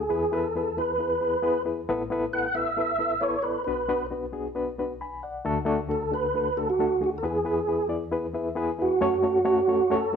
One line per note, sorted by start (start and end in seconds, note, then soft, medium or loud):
0.00 0.35 G#4 medium
0.09 1.84 E2 medium
0.09 1.84 E3 medium
0.09 0.24 B3 medium
0.09 0.24 E4 medium
0.09 0.24 G#4 medium
0.09 0.24 B4 loud
0.32 0.46 B3 medium
0.32 0.46 E4 medium
0.32 0.46 G#4 medium
0.32 0.79 A4 medium
0.32 0.46 B4 loud
0.55 0.69 B3 medium
0.55 0.69 E4 medium
0.55 0.69 G#4 medium
0.55 0.69 B4 medium
0.77 0.91 B3 medium
0.77 0.91 E4 medium
0.77 0.91 G#4 medium
0.77 1.62 B4 medium
0.77 0.91 B4 medium
0.98 1.12 B3 medium
0.98 1.13 E4 medium
0.98 1.13 G#4 medium
0.98 1.13 B4 medium
1.21 1.35 B3 medium
1.21 1.35 E4 medium
1.21 1.35 G#4 medium
1.21 1.35 B4 medium
1.42 1.56 B3 loud
1.42 1.56 E4 medium
1.42 1.57 G#4 medium
1.42 1.57 B4 loud
1.65 1.79 B3 medium
1.65 1.79 E4 medium
1.65 1.79 G#4 medium
1.65 1.79 B4 medium
1.89 3.62 A1 medium
1.89 3.63 A2 medium
1.89 2.02 B3 loud
1.89 2.02 E4 medium
1.89 2.02 A4 medium
1.89 2.02 B4 loud
2.10 2.24 B3 loud
2.10 2.24 E4 loud
2.10 2.24 A4 medium
2.10 2.25 B4 loud
2.33 2.46 B3 medium
2.33 2.46 E4 medium
2.33 2.46 A4 medium
2.33 2.46 B4 medium
2.33 2.56 F#5 medium
2.55 2.68 B3 medium
2.55 2.68 E4 medium
2.55 2.68 A4 medium
2.55 2.69 B4 medium
2.55 3.24 E5 loud
2.77 2.90 B3 medium
2.77 2.90 E4 medium
2.77 2.91 A4 medium
2.77 2.91 B4 medium
2.99 3.12 B3 medium
2.99 3.12 E4 medium
2.99 3.12 A4 medium
2.99 3.13 B4 medium
3.21 3.35 B3 medium
3.21 3.35 E4 medium
3.21 3.35 A4 medium
3.21 3.35 B4 medium
3.21 3.44 C#5 medium
3.42 3.57 B3 medium
3.42 3.57 E4 medium
3.42 3.57 A4 medium
3.42 3.63 B4 medium
3.42 3.57 D5 medium
3.64 5.41 B1 medium
3.64 5.41 B2 medium
3.64 3.80 B3 medium
3.64 3.80 D4 medium
3.64 3.80 F#4 medium
3.64 4.07 B4 medium
3.64 3.80 B4 medium
3.88 4.02 B3 medium
3.88 4.02 D4 medium
3.88 4.02 F#4 medium
3.88 4.02 B4 loud
4.11 4.24 B3 medium
4.11 4.24 D4 medium
4.11 4.24 F#4 medium
4.11 4.25 B4 medium
4.33 4.46 B3 medium
4.33 4.46 D4 medium
4.33 4.46 F#4 medium
4.33 4.46 G#4 medium
4.55 4.68 B3 medium
4.55 4.68 D4 medium
4.55 4.69 F#4 medium
4.55 4.69 B4 medium
4.78 4.91 B3 medium
4.78 4.92 D4 medium
4.78 4.92 F#4 medium
4.78 4.92 B4 medium
5.01 5.22 G#5 soft
5.01 5.22 B5 medium
5.23 5.65 D5 medium
5.23 5.65 F#5 medium
5.45 7.20 D2 medium
5.45 7.20 D3 medium
5.45 5.58 A3 loud
5.45 5.58 D4 medium
5.45 5.58 F#4 medium
5.45 5.58 A4 loud
5.65 5.79 A3 loud
5.65 5.80 D4 loud
5.65 5.80 F#4 loud
5.65 5.80 A4 loud
5.88 6.02 A3 medium
5.88 6.02 D4 medium
5.88 6.02 F#4 medium
5.88 6.03 A4 medium
5.88 6.13 A4 medium
6.11 6.25 A3 medium
6.11 6.25 D4 medium
6.11 6.25 F#4 medium
6.11 6.25 A4 medium
6.11 6.59 B4 loud
6.34 6.47 A3 medium
6.34 6.47 D4 medium
6.34 6.48 F#4 medium
6.34 6.48 A4 medium
6.57 6.70 A3 medium
6.57 6.70 D4 medium
6.57 6.70 F#4 medium
6.57 6.68 A4 medium
6.57 6.70 A4 medium
6.70 7.03 F#4 loud
6.79 6.92 A3 medium
6.79 6.93 D4 medium
6.79 6.93 F#4 medium
6.79 6.93 A4 loud
7.00 7.14 A3 medium
7.00 7.14 D4 medium
7.00 7.14 F#4 medium
7.00 7.10 F#4 medium
7.00 7.14 G#4 medium
7.18 7.24 A4 medium
7.23 8.98 E2 medium
7.23 8.98 E3 medium
7.23 7.36 B3 loud
7.23 7.37 E4 medium
7.23 7.37 G#4 medium
7.23 7.87 G#4 medium
7.23 7.37 B4 loud
7.44 7.58 B3 medium
7.44 7.59 E4 medium
7.44 7.59 G#4 medium
7.44 7.59 B4 loud
7.68 7.81 B3 medium
7.68 7.81 E4 medium
7.68 7.81 G#4 medium
7.68 7.81 B4 medium
7.88 8.03 B3 medium
7.88 8.03 E4 medium
7.88 8.03 G#4 medium
7.88 8.03 D5 medium
8.12 8.25 B3 medium
8.12 8.25 E4 medium
8.12 8.26 G#4 medium
8.12 8.26 B4 medium
8.33 8.47 B3 medium
8.33 8.48 E4 medium
8.33 8.48 G#4 medium
8.33 8.48 B4 medium
8.33 8.55 E5 medium
8.55 8.70 B3 loud
8.55 8.70 E4 medium
8.55 8.70 G#4 medium
8.55 8.70 B4 loud
8.55 8.98 G#5 medium
8.78 8.92 B3 medium
8.78 8.92 E4 medium
8.78 9.95 F#4 medium
8.78 8.92 G#4 medium
8.78 8.93 B4 medium
9.01 10.16 F#2 medium
9.01 9.15 A3 medium
9.01 9.15 C#4 medium
9.01 9.15 F#4 medium
9.01 9.15 A4 medium
9.01 9.15 C#5 loud
9.22 9.36 A3 medium
9.22 9.37 C#4 medium
9.22 9.37 F#4 medium
9.22 9.37 A4 medium
9.22 9.37 C#5 medium
9.45 9.59 A3 loud
9.45 9.59 C#4 medium
9.45 9.59 F#4 medium
9.45 9.59 A4 medium
9.45 9.59 C#5 loud
9.68 9.82 A3 medium
9.68 9.81 C#4 medium
9.68 9.82 F#4 medium
9.68 9.82 A4 medium
9.68 9.82 C#5 medium
9.90 10.04 A3 medium
9.90 10.04 C#4 medium
9.90 10.04 F#4 medium
9.90 10.04 A4 medium
9.90 10.16 A4 loud
9.90 10.04 C#5 loud
10.13 10.16 A3 medium